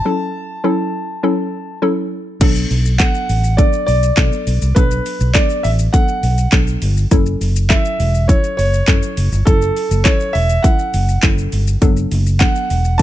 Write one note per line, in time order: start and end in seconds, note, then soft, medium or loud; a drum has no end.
0.00 1.77 A5 loud
0.05 0.42 F#3 medium
0.05 0.42 C#4 medium
0.05 0.43 E4 medium
0.05 0.43 A4 medium
0.64 1.01 F#3 medium
0.64 1.01 C#4 medium
0.64 1.01 E4 medium
0.64 1.01 A4 medium
1.23 1.60 F#3 medium
1.23 1.60 C#4 medium
1.23 1.60 E4 medium
1.23 1.60 A4 medium
1.82 2.19 F#3 medium
1.82 2.19 C#4 medium
1.82 2.19 E4 medium
1.82 2.19 A4 loud
2.41 2.63 B1 loud
2.41 2.78 F#3 loud
2.41 2.78 B3 medium
2.41 2.78 D4 medium
2.41 2.78 A4 loud
2.41 kick loud
2.41 closed hi-hat medium
2.41 crash loud
2.41 shaker medium
2.55 shaker medium
2.70 3.03 B1 loud
2.70 open hi-hat medium
2.70 shaker soft
2.85 shaker medium
2.98 3.37 F#3 medium
2.98 3.37 B3 medium
2.98 3.37 D4 medium
2.98 3.37 A4 medium
2.98 3.54 F#5 loud
2.98 kick loud
2.98 clap loud
2.98 closed hi-hat medium
2.98 shaker medium
3.14 shaker medium
3.29 3.62 A1 medium
3.29 open hi-hat medium
3.29 shaker medium
3.44 shaker medium
3.57 3.95 F#3 medium
3.57 3.96 B3 medium
3.57 3.96 D4 medium
3.57 3.96 A4 medium
3.57 3.85 D5 loud
3.57 kick loud
3.57 closed hi-hat medium
3.57 shaker medium
3.73 shaker soft
3.86 4.10 B1 medium
3.86 4.71 D5 loud
3.86 open hi-hat medium
3.86 shaker medium
4.03 shaker medium
4.17 4.28 B2 loud
4.17 4.54 F#3 medium
4.17 4.54 B3 medium
4.17 4.54 D4 medium
4.17 4.54 A4 medium
4.17 kick loud
4.17 clap loud
4.17 closed hi-hat medium
4.17 shaker medium
4.32 shaker medium
4.47 4.58 B1 loud
4.47 open hi-hat medium
4.47 shaker medium
4.62 4.73 C2 medium
4.62 shaker medium
4.75 4.98 B1 loud
4.75 5.13 F#3 medium
4.75 5.13 B3 medium
4.75 5.13 D4 medium
4.75 5.13 A4 medium
4.75 5.36 B4 medium
4.75 kick loud
4.75 closed hi-hat medium
4.75 shaker medium
4.91 shaker medium
5.06 open hi-hat medium
5.06 shaker medium
5.20 5.31 B1 medium
5.20 shaker medium
5.34 5.72 F#3 medium
5.34 5.72 B3 medium
5.34 5.72 D4 medium
5.34 5.72 A4 medium
5.34 5.65 D5 medium
5.34 kick loud
5.34 clap loud
5.34 closed hi-hat medium
5.34 shaker medium
5.49 shaker medium
5.63 5.86 A1 loud
5.63 5.70 E5 medium
5.63 open hi-hat medium
5.63 shaker medium
5.79 shaker medium
5.93 6.31 F#3 medium
5.93 6.31 B3 medium
5.93 6.31 D4 medium
5.93 6.31 A4 medium
5.93 6.48 F#5 medium
5.93 kick loud
5.93 closed hi-hat medium
5.93 shaker medium
6.08 shaker soft
6.23 6.45 B1 medium
6.23 open hi-hat medium
6.23 shaker medium
6.38 shaker medium
6.52 6.74 B1 loud
6.52 6.90 F#3 medium
6.52 6.90 B3 medium
6.52 6.90 D4 medium
6.52 6.90 A4 medium
6.52 kick loud
6.52 clap loud
6.52 closed hi-hat medium
6.52 shaker medium
6.67 shaker medium
6.82 7.04 G1 loud
6.82 open hi-hat medium
6.82 shaker medium
6.97 shaker medium
7.11 7.33 F#1 loud
7.11 7.48 F#3 loud
7.11 7.49 C#4 medium
7.11 7.49 E4 medium
7.11 7.49 A4 loud
7.11 kick loud
7.11 closed hi-hat medium
7.11 shaker medium
7.26 shaker medium
7.41 7.74 F#1 loud
7.41 open hi-hat medium
7.41 shaker soft
7.56 shaker medium
7.69 8.07 F#3 medium
7.69 8.07 C#4 medium
7.69 8.07 E4 medium
7.69 8.07 A4 medium
7.69 8.25 E5 medium
7.69 kick loud
7.69 clap loud
7.69 closed hi-hat medium
7.69 shaker medium
7.85 shaker medium
8.00 8.32 E1 loud
8.00 open hi-hat medium
8.00 shaker medium
8.14 shaker medium
8.28 8.66 F#3 medium
8.28 8.66 C#4 medium
8.28 8.66 E4 medium
8.28 8.66 A4 medium
8.28 8.56 C#5 medium
8.28 kick loud
8.28 closed hi-hat medium
8.28 shaker medium
8.44 shaker medium
8.57 8.80 F#1 loud
8.57 9.49 C#5 loud
8.57 open hi-hat medium
8.57 shaker medium
8.73 shaker medium
8.88 8.99 F#2 loud
8.88 9.25 F#3 medium
8.88 9.25 C#4 medium
8.88 9.25 E4 medium
8.88 9.25 A4 medium
8.88 kick loud
8.88 clap loud
8.88 closed hi-hat medium
8.88 shaker medium
9.03 shaker medium
9.17 9.28 F#1 medium
9.17 open hi-hat medium
9.17 shaker medium
9.32 9.43 G1 medium
9.32 shaker medium
9.45 9.69 F#1 loud
9.45 9.84 F#3 medium
9.45 9.84 C#4 medium
9.45 9.84 E4 medium
9.45 10.07 A4 loud
9.45 9.84 A4 loud
9.45 kick loud
9.45 closed hi-hat medium
9.45 shaker medium
9.62 shaker medium
9.77 open hi-hat medium
9.77 shaker medium
9.91 10.02 F#1 medium
9.91 shaker medium
10.04 10.43 F#3 medium
10.04 10.43 C#4 medium
10.04 10.43 E4 medium
10.04 10.43 A4 medium
10.04 10.35 C#5 loud
10.04 kick loud
10.04 clap loud
10.04 closed hi-hat medium
10.04 shaker medium
10.20 shaker medium
10.33 10.57 E1 medium
10.33 10.64 E5 loud
10.33 open hi-hat medium
10.33 shaker medium
10.49 shaker medium
10.62 11.01 F#3 medium
10.62 11.01 C#4 medium
10.62 11.01 E4 medium
10.62 11.01 A4 medium
10.62 11.18 F#5 medium
10.62 kick loud
10.62 closed hi-hat medium
10.62 shaker medium
10.79 shaker soft
10.94 11.16 F#1 loud
10.94 open hi-hat medium
10.94 shaker medium
11.08 shaker medium
11.23 11.45 F#1 loud
11.23 11.60 F#3 medium
11.23 11.60 C#4 medium
11.23 11.60 E4 medium
11.23 11.60 A4 medium
11.23 kick loud
11.23 clap loud
11.23 closed hi-hat medium
11.23 shaker medium
11.38 shaker medium
11.52 11.74 G1 medium
11.52 open hi-hat medium
11.52 shaker medium
11.67 shaker medium
11.81 12.04 F#1 loud
11.81 12.19 F#3 loud
11.81 12.19 B3 medium
11.81 12.19 D4 medium
11.81 12.19 A4 loud
11.81 kick loud
11.81 closed hi-hat medium
11.81 shaker medium
11.96 shaker medium
12.11 12.44 F#1 loud
12.11 open hi-hat medium
12.11 shaker soft
12.26 shaker medium
12.39 12.78 F#3 medium
12.39 12.78 B3 medium
12.39 12.78 D4 medium
12.39 12.78 A4 medium
12.39 13.01 F#5 loud
12.39 kick loud
12.39 clap loud
12.39 closed hi-hat medium
12.39 shaker medium
12.55 shaker medium
12.70 13.02 E1 medium
12.70 open hi-hat medium
12.70 shaker medium
12.85 shaker medium
12.98 13.02 A5 loud